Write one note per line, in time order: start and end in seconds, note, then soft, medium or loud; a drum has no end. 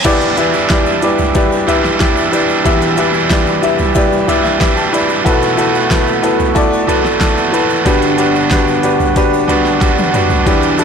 0.05 0.37 E2 medium
0.05 2.62 E2 medium
0.05 0.38 B2 medium
0.05 2.62 E3 medium
0.05 0.36 E3 medium
0.05 0.37 G3 medium
0.05 0.38 D4 medium
0.05 0.29 E4 loud
0.05 0.38 E4 loud
0.05 0.30 G4 loud
0.05 0.30 B4 loud
0.05 0.30 D5 loud
0.05 kick loud
0.05 closed hi-hat medium
0.05 crash medium
0.05 shaker medium
0.21 closed hi-hat medium
0.21 shaker soft
0.37 0.54 E3 medium
0.37 0.54 G3 medium
0.37 0.53 D4 medium
0.37 0.62 E4 medium
0.37 0.52 E4 medium
0.37 0.62 G4 medium
0.37 0.62 B4 medium
0.37 0.62 E5 loud
0.37 closed hi-hat medium
0.37 shaker soft
0.53 1.67 E3 soft
0.53 1.67 G3 medium
0.53 1.67 D4 medium
0.53 1.69 E4 medium
0.53 shaker medium
0.70 0.94 E4 medium
0.70 0.95 G4 medium
0.70 0.95 B4 medium
0.70 0.95 D5 medium
0.70 kick loud
0.70 snare loud
0.70 closed hi-hat loud
0.70 shaker medium
0.86 shaker soft
1.02 1.27 E4 medium
1.02 1.27 G4 medium
1.02 1.27 B4 medium
1.02 1.28 D5 medium
1.02 closed hi-hat medium
1.02 shaker soft
1.18 floor tom medium
1.18 shaker medium
1.35 1.59 E4 loud
1.35 1.60 G4 medium
1.35 1.60 B4 medium
1.35 1.60 D5 loud
1.35 kick loud
1.35 closed hi-hat medium
1.35 shaker medium
1.52 shaker soft
1.67 1.99 E3 medium
1.67 2.00 G3 medium
1.67 2.00 D4 medium
1.67 1.92 E4 medium
1.67 2.01 E4 medium
1.67 1.92 G4 medium
1.67 1.92 B4 medium
1.67 1.93 E5 medium
1.67 closed hi-hat medium
1.67 floor tom medium
1.67 shaker soft
1.84 snare soft
1.84 shaker soft
1.99 2.31 E3 medium
1.99 2.32 G3 medium
1.99 2.33 D4 medium
1.99 2.24 E4 medium
1.99 2.34 E4 medium
1.99 2.24 G4 medium
1.99 2.25 B4 medium
1.99 2.25 E5 medium
1.99 kick loud
1.99 snare medium
1.99 closed hi-hat medium
1.99 shaker medium
2.17 shaker medium
2.32 2.65 E3 medium
2.32 2.65 G3 medium
2.32 2.65 D4 medium
2.32 2.57 E4 medium
2.32 2.66 E4 medium
2.32 2.57 G4 medium
2.32 2.57 B4 medium
2.32 2.57 D5 medium
2.32 closed hi-hat medium
2.32 shaker medium
2.49 shaker soft
2.64 2.98 E2 loud
2.64 5.22 E2 medium
2.64 2.98 B2 loud
2.64 5.21 E3 medium
2.64 2.96 E3 medium
2.64 2.97 G3 loud
2.64 2.98 D4 loud
2.64 2.89 E4 loud
2.64 2.99 E4 medium
2.64 2.90 G4 loud
2.64 2.90 B4 loud
2.64 2.90 E5 loud
2.64 kick loud
2.64 closed hi-hat medium
2.64 shaker medium
2.81 closed hi-hat medium
2.81 shaker soft
2.96 3.14 E3 medium
2.96 3.15 G3 medium
2.96 3.14 D4 medium
2.96 3.22 E4 medium
2.96 3.13 E4 medium
2.96 3.22 G4 medium
2.96 3.23 B4 medium
2.96 3.23 E5 loud
2.96 closed hi-hat medium
2.96 shaker soft
3.14 4.27 E3 medium
3.14 4.27 G3 medium
3.14 4.28 D4 medium
3.14 4.30 E4 medium
3.14 shaker soft
3.29 3.54 E4 medium
3.29 3.55 G4 medium
3.29 3.55 B4 medium
3.29 3.55 D5 medium
3.29 kick loud
3.29 snare loud
3.29 closed hi-hat loud
3.29 shaker medium
3.47 shaker soft
3.62 3.87 E4 medium
3.62 3.87 G4 medium
3.62 3.88 B4 medium
3.62 3.88 E5 loud
3.62 closed hi-hat medium
3.62 shaker medium
3.79 floor tom medium
3.79 shaker soft
3.95 4.20 E4 loud
3.95 4.20 G4 loud
3.95 4.20 B4 loud
3.95 4.20 D5 loud
3.95 kick loud
3.95 closed hi-hat medium
3.95 shaker medium
4.12 shaker medium
4.27 4.58 E3 medium
4.27 4.59 G3 medium
4.27 4.60 D4 medium
4.27 4.52 E4 medium
4.27 4.61 E4 medium
4.27 4.52 G4 medium
4.27 4.52 B4 medium
4.27 4.43 D5 medium
4.27 4.42 E5 loud
4.27 closed hi-hat medium
4.27 floor tom medium
4.27 shaker soft
4.44 4.59 E5 medium
4.44 snare soft
4.44 shaker soft
4.59 4.91 E3 medium
4.59 4.92 G3 medium
4.59 4.94 D4 medium
4.59 4.84 E4 medium
4.59 4.94 E4 medium
4.59 4.85 G4 medium
4.59 4.85 B4 medium
4.59 4.85 E5 medium
4.59 4.76 G5 medium
4.59 kick loud
4.59 snare loud
4.59 closed hi-hat medium
4.59 shaker medium
4.77 4.92 A5 medium
4.77 shaker medium
4.92 5.25 E3 medium
4.92 5.26 G3 medium
4.92 5.26 D4 medium
4.92 5.17 E4 medium
4.92 5.27 E4 medium
4.92 5.17 G4 medium
4.92 5.17 B4 medium
4.92 5.18 D5 medium
4.92 5.23 B5 medium
4.92 closed hi-hat medium
4.92 shaker medium
5.09 shaker soft
5.25 7.82 B1 medium
5.25 7.82 B2 medium
5.25 5.58 B2 medium
5.25 5.56 E3 medium
5.25 5.57 A3 medium
5.25 5.58 B3 loud
5.25 5.50 E4 loud
5.25 5.50 F#4 loud
5.25 5.59 F#4 loud
5.25 5.50 A4 loud
5.25 5.50 B4 loud
5.25 kick loud
5.25 closed hi-hat loud
5.25 shaker medium
5.42 closed hi-hat soft
5.42 shaker soft
5.57 5.74 E3 medium
5.57 5.75 A3 medium
5.57 5.73 B3 medium
5.57 5.82 E4 medium
5.57 5.82 F#4 medium
5.57 5.72 F#4 medium
5.57 5.83 A4 medium
5.57 5.83 B4 medium
5.57 closed hi-hat medium
5.57 shaker medium
5.73 6.87 A3 soft
5.73 6.89 B3 medium
5.73 6.89 F#4 medium
5.73 shaker soft
5.90 6.15 E4 medium
5.90 6.15 F#4 medium
5.90 6.15 A4 medium
5.90 6.15 B4 medium
5.90 kick loud
5.90 snare loud
5.90 closed hi-hat loud
5.90 shaker medium
6.07 shaker soft
6.22 6.47 E4 loud
6.22 6.47 F#4 medium
6.22 6.48 A4 medium
6.22 6.48 B4 loud
6.22 closed hi-hat medium
6.22 shaker medium
6.40 floor tom medium
6.40 shaker medium
6.55 6.80 E4 loud
6.55 6.80 F#4 loud
6.55 6.80 A4 loud
6.55 6.81 D5 loud
6.55 kick loud
6.55 closed hi-hat medium
6.55 shaker medium
6.73 shaker medium
6.87 7.19 E3 medium
6.87 7.20 A3 medium
6.87 7.21 B3 medium
6.87 7.12 E4 medium
6.87 7.12 F#4 medium
6.87 7.21 F#4 medium
6.87 7.13 A4 medium
6.87 7.13 B4 loud
6.87 closed hi-hat medium
6.87 floor tom medium
6.87 shaker soft
7.05 snare soft
7.05 shaker soft
7.20 7.52 E3 medium
7.20 7.53 A3 medium
7.20 7.54 B3 medium
7.20 7.45 E4 medium
7.20 7.45 F#4 medium
7.20 7.54 F#4 medium
7.20 7.45 A4 medium
7.20 7.45 D5 medium
7.20 kick loud
7.20 snare medium
7.20 closed hi-hat medium
7.20 shaker medium
7.37 shaker soft
7.52 7.85 E3 medium
7.52 7.85 A3 medium
7.52 7.85 B3 medium
7.52 7.77 E4 medium
7.52 7.78 F#4 medium
7.52 7.86 F#4 medium
7.52 7.78 A4 medium
7.52 7.78 B4 medium
7.52 closed hi-hat medium
7.52 shaker soft
7.69 shaker soft
7.85 10.42 G1 medium
7.85 10.42 G2 medium
7.85 8.17 G3 medium
7.85 8.17 B3 medium
7.85 8.10 D4 loud
7.85 8.18 D4 loud
7.85 8.10 F#4 loud
7.85 8.19 F#4 loud
7.85 8.10 G4 loud
7.85 8.11 B4 loud
7.85 kick loud
7.85 closed hi-hat loud
7.85 shaker medium
8.02 closed hi-hat soft
8.02 shaker medium
8.18 8.34 G3 medium
8.18 8.35 B3 medium
8.18 8.42 D4 medium
8.18 8.34 D4 medium
8.18 8.43 F#4 medium
8.18 8.33 F#4 medium
8.18 8.43 G4 medium
8.18 8.43 B4 loud
8.18 closed hi-hat medium
8.18 shaker medium
8.34 9.49 B3 medium
8.34 9.49 D4 medium
8.34 9.48 F#4 medium
8.34 shaker soft
8.51 8.75 D4 medium
8.51 8.75 F#4 medium
8.51 8.76 G4 medium
8.51 8.76 B4 medium
8.51 kick loud
8.51 snare loud
8.51 closed hi-hat loud
8.51 shaker medium
8.68 shaker medium
8.83 9.08 D4 medium
8.83 9.08 F#4 medium
8.83 9.08 G4 medium
8.83 9.08 B4 loud
8.83 closed hi-hat medium
8.83 shaker medium
9.00 floor tom medium
9.00 shaker medium
9.16 9.40 D4 loud
9.16 9.41 F#4 loud
9.16 9.41 G4 loud
9.16 9.41 B4 loud
9.16 kick loud
9.16 closed hi-hat medium
9.16 shaker medium
9.34 shaker medium
9.48 9.79 G3 medium
9.48 9.80 B3 medium
9.48 9.73 D4 medium
9.48 9.81 D4 medium
9.48 9.73 F#4 medium
9.48 9.82 F#4 medium
9.48 9.73 G4 medium
9.48 9.73 B4 medium
9.48 closed hi-hat medium
9.48 floor tom medium
9.48 shaker soft
9.65 snare soft
9.65 shaker soft
9.80 10.12 G3 medium
9.80 10.13 B3 medium
9.80 10.05 D4 medium
9.80 10.14 D4 medium
9.80 10.05 F#4 medium
9.80 10.15 F#4 medium
9.80 10.06 G4 medium
9.80 10.06 B4 medium
9.80 kick loud
9.80 snare medium
9.80 closed hi-hat medium
9.80 shaker medium
9.98 high tom medium
9.98 shaker soft
10.13 10.46 G3 medium
10.13 10.47 B3 medium
10.13 10.38 D4 medium
10.13 10.47 D4 medium
10.13 10.38 F#4 medium
10.13 10.47 F#4 medium
10.13 10.38 G4 medium
10.13 10.39 B4 medium
10.13 closed hi-hat medium
10.13 mid tom medium
10.13 shaker medium
10.30 floor tom loud
10.30 shaker soft
10.45 10.84 E2 medium
10.45 10.79 E2 medium
10.45 10.79 B2 medium
10.45 10.84 E3 medium
10.45 10.77 E3 medium
10.45 10.78 G3 loud
10.45 10.70 D4 loud
10.45 10.79 D4 medium
10.45 10.71 E4 medium
10.45 10.79 E4 medium
10.45 10.71 G4 loud
10.45 10.71 B4 loud
10.45 kick loud
10.45 closed hi-hat loud
10.45 shaker medium
10.62 closed hi-hat medium
10.62 shaker soft
10.78 10.84 E3 medium
10.78 10.84 G3 medium
10.78 10.84 D4 medium
10.78 10.84 E4 medium
10.78 10.84 G4 medium
10.78 10.84 A4 medium
10.78 closed hi-hat medium
10.78 shaker soft